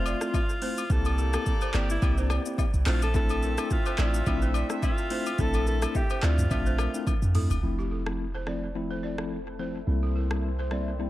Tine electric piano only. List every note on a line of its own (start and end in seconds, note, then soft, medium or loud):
0.00 0.17 A3 loud
0.00 0.17 C4 medium
0.00 0.18 F4 loud
0.00 0.18 E5 medium
0.21 0.39 A3 medium
0.21 0.39 C4 medium
0.21 0.39 E4 medium
0.21 0.39 F4 medium
0.62 0.82 A3 medium
0.62 0.82 C4 medium
0.62 0.82 E4 medium
0.62 0.82 F4 medium
0.90 1.30 A#3 loud
0.90 1.30 C4 medium
0.90 1.30 E4 medium
0.90 1.30 G4 loud
1.33 1.51 A#3 medium
1.33 1.51 C4 medium
1.33 1.51 E4 medium
1.33 1.52 G4 medium
1.74 1.94 A#3 medium
1.74 1.94 C4 medium
1.74 1.94 E4 medium
1.74 1.94 G4 medium
2.02 2.42 A#3 loud
2.02 2.42 C4 medium
2.02 2.42 E4 medium
2.02 2.42 G4 loud
2.45 2.63 A#3 medium
2.45 2.63 C4 medium
2.45 2.64 E4 medium
2.45 2.64 G4 medium
2.86 3.06 A3 medium
2.86 3.06 C4 medium
2.86 3.06 D4 medium
2.86 3.06 E4 medium
3.14 3.54 A3 loud
3.14 3.54 C4 medium
3.14 3.54 D4 medium
3.14 3.54 E4 loud
3.58 3.76 A3 medium
3.58 3.76 C4 medium
3.58 3.76 D4 medium
3.58 3.76 E4 medium
3.98 4.18 A3 medium
3.98 4.18 C4 medium
3.98 4.18 D4 medium
3.98 4.18 E4 medium
4.26 4.66 A3 loud
4.26 4.66 C4 medium
4.26 4.66 D4 medium
4.26 4.66 E4 loud
4.70 4.88 A3 medium
4.70 4.88 C4 medium
4.70 4.88 D4 medium
4.70 4.88 E4 medium
5.10 5.30 A3 medium
5.10 5.30 C4 medium
5.10 5.30 D4 medium
5.10 5.30 E4 medium
5.38 5.78 A3 medium
5.38 5.78 C4 medium
5.38 5.78 D4 medium
5.38 5.79 E4 loud
5.82 6.00 A3 medium
5.82 6.00 C4 medium
5.82 6.00 D4 medium
5.82 6.00 E4 medium
6.23 6.42 A3 medium
6.23 6.42 C4 medium
6.23 6.43 D4 medium
6.23 6.43 E4 medium
6.50 6.90 A3 loud
6.50 6.90 C4 medium
6.50 6.91 D4 medium
6.50 6.91 E5 loud
6.94 7.12 A3 medium
6.94 7.12 C4 medium
6.94 7.12 D4 medium
6.94 7.12 E4 medium
7.35 7.54 A3 medium
7.35 7.55 C4 medium
7.35 7.55 D4 medium
7.35 7.55 E4 medium
7.63 8.02 F3 medium
7.63 8.03 A3 medium
7.63 8.03 C4 medium
7.63 8.03 E4 loud
8.06 8.24 F3 medium
8.06 8.24 A3 medium
8.06 8.24 C4 medium
8.06 8.24 E4 medium
8.47 8.67 F3 medium
8.47 8.67 A3 medium
8.47 8.67 C4 medium
8.47 8.67 E4 medium
8.75 9.15 F3 medium
8.75 9.15 A3 medium
8.75 9.15 C4 medium
8.75 9.15 E4 loud
9.18 9.36 F3 medium
9.18 9.36 A3 medium
9.18 9.36 C4 medium
9.18 9.37 E4 medium
9.59 9.79 F3 medium
9.59 9.79 A3 medium
9.59 9.79 C4 medium
9.59 9.79 E4 medium
9.87 10.27 G3 medium
9.87 10.27 A#3 medium
9.87 10.27 C4 medium
9.87 10.27 E4 medium
10.30 10.48 G3 medium
10.30 10.48 A#3 medium
10.30 10.49 C4 medium
10.30 10.49 E4 medium
10.71 10.91 G3 medium
10.71 10.91 A#3 medium
10.71 10.91 C4 medium
10.71 10.91 E4 medium
10.99 11.10 G3 medium
10.99 11.10 A#3 medium
10.99 11.10 C4 medium
10.99 11.10 E4 loud